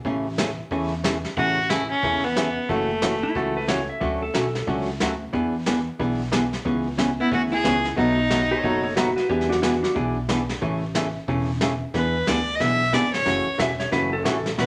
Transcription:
0.05 A1 C#3 E3 A3 C#4 G#4, brush sweep, kick
0.38 C#3 E3 A3 C#4 G#4, snare, hi-hat pedal
0.71 E2 C#3 E3 A3 C#4 G#4, brush sweep, kick
1.04 C#3 E3 A3 C#4 G#4, snare, hi-hat pedal
1.24 snare
1.36 A1 C#3 E3 A3 C#4 F#4 G#4, brush sweep, kick
1.70 C#3 E3 A3 C#4 E4 G#4, snare, hi-hat pedal
1.90 C#4
2.03 E2 C#3 E3 A3 C#4 G#4, brush sweep, kick
2.24 B3
2.36 C#3 E3 A3 C#4 G#4, snare, hi-hat pedal
2.69 F#1 C#3 E3 A3 C#4 F#4, brush sweep, kick
3.02 C#3 E3 A3 C#4 F#4, snare, hi-hat pedal
3.23 E4
3.35 C#2 C#3 E3 A3 C#4 F#4 A4, brush sweep, kick
3.57 B4
3.68 C#3 E3 A3 C#4 F#4 C#5, snare, hi-hat pedal
3.89 E5
4.00 D2 D3 F#3 A3 C#4 F#4, brush sweep, kick
4.22 A4
4.34 B1 D3 F#3 A3 C#4 F#4, snare, hi-hat pedal
4.55 snare
4.67 C#2 D3 F#3 A3 C#4 F#4, brush sweep, kick
5.00 D2 D3 F#3 A3 C#4 F#4, snare, hi-hat pedal
5.33 E2 E3 B3 D4 G#4, brush sweep, kick
5.66 E3 B3 D4 G#4, snare, hi-hat pedal
5.99 B1 E3 B3 D4 G#4, brush sweep, kick
6.32 E3 B3 D4 G#4, snare, hi-hat pedal
6.53 snare
6.65 C#2 C#3 E3 B3 C#4 G#4, brush sweep, kick
6.98 C#3 E3 B3 C#4 G#4, snare, hi-hat pedal
7.20 B3 E4
7.31 D2 C#3 E3 B3 C#4 F#4 G#4, brush sweep, kick
7.52 E4 G#4
7.64 C#2 C#3 E3 B3 C#4 G#4, snare, hi-hat pedal
7.85 snare
7.97 B1 B2 F#3 A3 B3 D#4 F#4, brush sweep, kick
8.30 B2 F#3 A3 D#4 F#4, snare, hi-hat pedal
8.51 A4 C#5
8.63 F#1 B2 F#3 A3 D#4 F#4 A4 C#5, brush sweep, kick
8.83 A4 C#5
8.96 B2 F#3 A3 D#4 F#4 B4, snare, hi-hat pedal
9.16 F#4 B4, snare
9.29 E2 E3 B3 D4 G4 G#4 B4, brush sweep, kick
9.41 snare
9.49 D4 F#4, snare
9.62 E3 B3 D4 F#4 G#4, snare, hi-hat pedal
9.83 D4 F#4, snare
9.95 B1 E3 B3 D4 G#4, brush sweep, kick
10.29 E3 B3 D4 G#4, snare, hi-hat pedal
10.49 snare
10.61 A1 C#3 E3 A3 C#4 G#4, brush sweep, kick
10.95 C#3 E3 A3 C#4 G#4, snare, hi-hat pedal
11.28 E1 C#3 E3 A3 C#4 G#4, brush sweep, kick
11.61 C#3 E3 A3 C#4 G#4, snare, hi-hat pedal
11.94 E2 E3 B3 D4 G#4 B4, brush sweep, kick, snare
12.27 D2 E3 B3 D4 G#4 D5, kick, snare, hi-hat pedal
12.55 D#5
12.60 B1 E3 B3 D4 G#4 E5, brush sweep, kick, snare
12.93 G#1 E3 B3 D4 G#4 D5, kick, snare, hi-hat pedal
13.13 C#5, snare
13.25 F#1 C#3 E3 A3 C#4 F#4, brush sweep, kick, snare
13.46 muted upright bass stroke
13.58 E1 C#3 E3 A3 C#4 F#4 E5, kick, snare, hi-hat pedal
13.80 C#5, snare
13.92 F#1 C#3 E3 A3 C#4 F#4 B4, brush sweep, kick, snare
14.13 A4
14.25 A1 C#3 E3 A3 C#4 F#4 A4, kick, snare, hi-hat pedal
14.46 snare
14.58 B1 B2 F#3 A3 D4 F#4 B4, brush sweep, kick, snare

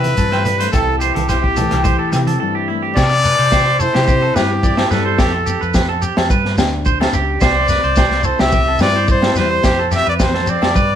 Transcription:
Already playing: C3 E3 A3 C4 B4 E5
0.04 closed hi-hat, high conga
0.17 G2 E4 A4, kick, closed hi-hat, shekere
0.32 C5, cross-stick, low agogo
0.45 G3 B4, closed hi-hat, low conga, shekere
0.60 A3 C5, closed hi-hat
0.72 C2 C3 E4 A4, kick, cross-stick, closed hi-hat, low agogo, shekere
0.99 G4 C5, closed hi-hat, shekere
1.03 C4
1.15 C2 A4, closed hi-hat, high conga
1.29 E4 C5, kick, cross-stick, closed hi-hat, low agogo, shekere
1.43 G4, kick
1.56 E3 A3 A4, closed hi-hat, high conga, low conga, shekere
1.71 C2, cross-stick, closed hi-hat, low conga, low agogo
1.84 E4 C5, kick, closed hi-hat, shekere
1.99 A4
2.12 C3 C4, muted clean electric guitar stroke, cross-stick, closed hi-hat, high conga, low agogo, shekere
2.27 A4, closed hi-hat, high conga
2.40 G2 E4 A4
2.55 G4
2.68 A3 E4
2.82 G4
2.95 C3 D5, muted clean electric guitar stroke, kick, snare, crash, low agogo, shekere
3.24 C4 B4, shekere
3.38 C3 C5, shekere
3.52 E3 C5, kick, snare, low agogo, shekere
3.79 E4 A4 C5, shekere
3.94 C3 G4, snare, low agogo
4.08 G2 C4 G4, kick, shekere
4.22 A4
4.35 G2 E4 G4 B4, snare, low agogo, shekere
4.63 E3 D5, kick, shekere
4.77 A4, snare, low agogo
4.91 G2 G3 A4 B4, snare, shekere
5.05 C5
5.18 F2 G4, kick, snare, low agogo, shekere
5.33 A4
5.46 C4 G4, shekere
5.61 F2 B4, shekere
5.74 F3, kick, snare, low agogo, shekere
5.89 A4
6.02 G4, shekere
6.17 F2 A4, snare, low agogo
6.30 G2 B4, kick, shekere
6.45 snare
6.58 D2 D4, muted clean electric guitar stroke, snare, low agogo, shekere
6.85 D3 C5, kick, shekere
7.00 A4, snare, low agogo
7.13 C#2 G4, shekere
7.41 C2 C3 C5 D5, kick, snare, low agogo, shekere
7.68 C4 B4, snare, shekere
7.83 C2 C5, shekere
7.96 E3 C5, kick, snare, low agogo, shekere
8.11 snare
8.23 E4 A4 C5, shekere
8.39 C2 G4 E5, snare, low agogo
8.52 G2 C4 G4, kick, shekere
8.68 A4
8.79 G2 E4 B4 D5, snare, low agogo, shekere
8.96 C5
9.08 E3 C5 D5, kick, shekere
9.22 A4, snare, low agogo
9.35 E2 G3 B4 C5, snare, shekere
9.51 C5
9.63 F2 G4, kick, snare, low agogo, shekere
9.79 A4
9.91 C4 G4, snare, shekere
9.96 E5
10.06 F2 B4 D5, shekere
10.20 E2 C5, kick, snare, low agogo, shekere
10.34 A4, snare
10.47 F2 C4 D5, shekere
10.62 F2 A4, snare, low agogo, shekere
10.75 G2 B4, kick, shekere

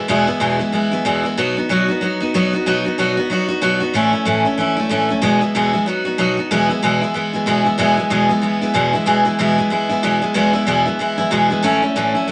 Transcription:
0.08 E2 B2 E3 G#3 B3 E4
0.27 E3 G#3 B3 E4
0.40 E2 B2 E3 G#3 B3 E4
0.59 E3 G#3 B3 E4
0.72 E3 G#3 B3 E4
0.91 E3 G#3 B3 E4
1.05 E2 B2 E3 G#3 B3 E4
1.23 E3 G#3 B3 E4
1.37 B2 F#3 B3 D#4 F#4
1.57 B3 D#4 F#4
1.69 B2 F#3 B3 D#4 F#4
1.88 B3 D#4 F#4
2.01 F#3 B3 D#4 F#4
2.20 B3 D#4 F#4
2.34 B2 F#3 B3 D#4 F#4
2.53 B3 D#4 F#4
2.66 B2 F#3 B3 D#4 F#4
2.85 B3 D#4 F#4
2.98 B2 F#3 B3 D#4 F#4
3.17 B3 D#4 F#4
3.30 F#3 B3 D#4 F#4
3.48 B3 D#4 F#4
3.62 B2 F#3 B3 D#4 F#4
3.80 B3 D#4 F#4
3.94 A2 E3 A3 C#4 E4
4.13 A3 C#4 E4
4.25 A2 E3 A3 C#4 E4
4.45 A3 C#4 E4
4.58 E3 A3 C#4 E4
4.76 A3 C#4 E4
4.89 A2 E3 A3 C#4 E4
5.09 A3 C#4 E4
5.22 E2 B2 E3 G#3 B3 E4
5.41 E3 G#3 B3 E4
5.55 E2 B2 E3 G#3 B3 E4
5.73 E3 G#3 B3 E4
5.86 F#3 B3 D#4 F#4
6.05 B3 D#4 F#4
6.18 B2 F#3 B3 D#4 F#4
6.37 B3 D#4 F#4
6.51 E2 B2 E3 G#3 B3 E4
6.69 E3 G#3 B3 E4
6.82 E2 B2 E3 G#3 B3 E4
7.01 E3 G#3 B3 E4
7.14 E3 G#3 B3 E4
7.33 E3 G#3 B3 E4
7.46 E2 B2 E3 G#3 B3 E4
7.64 E3 G#3 B3 E4
7.78 E2 B2 E3 G#3 B3 E4
7.97 E3 G#3 B3 E4
8.10 E2 B2 E3 G#3 B3 E4
8.29 E3 G#3 B3 E4
8.42 E3 G#3 B3 E4
8.61 E3 G#3 B3 E4
8.74 E2 B2 E3 G#3 B3 E4
8.93 E3 G#3 B3 E4
9.06 E2 B2 E3 G#3 B3 E4
9.25 E3 G#3 B3 E4
9.39 E2 B2 E3 G#3 B3 E4
9.58 E3 G#3 B3 E4
9.70 E3 G#3 B3 E4
9.89 E3 G#3 B3 E4
10.03 E2 B2 E3 G#3 B3 E4
10.22 E3 G#3 B3 E4
10.34 E2 B2 E3 G#3 B3 E4
10.53 E3 G#3 B3 E4
10.67 E2 B2 E3 G#3 B3 E4
10.86 E3 G#3 B3 E4
10.99 E3 G#3 B3 E4
11.18 E3 G#3 B3 E4
11.31 E2 B2 E3 G#3 B3 E4
11.50 E3 G#3 B3 E4
11.63 A2 E3 A3 C#4 E4
11.82 A3 C#4 E4
11.96 A2 E3 A3 C#4 E4
12.15 A3 C#4 E4
12.28 E3 A3

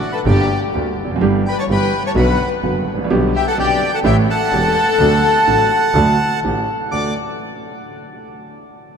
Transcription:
Already playing: D5 F#5
0.12 A4 B4 A5 B5
0.17 F#5
0.25 G1 G2 D3 G3 A#3 G4 D5 G5
0.73 D2 D3 G3 A#3 G4
0.97 F1
1.05 E2
1.11 F2
1.16 F#2
1.21 G1 G2 E3 G3 B3 G4
1.46 B4 G5 B5
1.58 C#5 A5 C#6
1.68 G1 G2 E3 G3 B3 G4 B4 G5 B5
2.05 C#5 A5 C#6
2.15 B1 B2 D3 F#3 B3 F#4 B4 F#5 B5
2.62 F#1 F#2 D3 F#3 B3 F#4
2.86 A1
2.94 G#1
2.98 A1
3.04 A#1
3.10 B1 B2 D3 G3 B3 G4
3.34 G4 E5 G5
3.46 A4 F#5 A5
3.58 B1 B2 D3 G3 B3 G4 D5 G5
3.91 A4 F#5 A5
4.04 A1 A2 E3 A3 C#4 G4 E5 G5
4.27 A4 F#5 A5
4.52 E1 E2 E3 A3 C#4 G4
4.99 D2 D3 F#3 A3 D4 A4
5.47 A1 A2 F#3 A3 D4 A4
5.94 D2 D3 F#3 A3 D4 A4
6.43 A1 A2 E3 A3 C#4 G4
6.90 D2 A3 D4 F#4 D5 D6

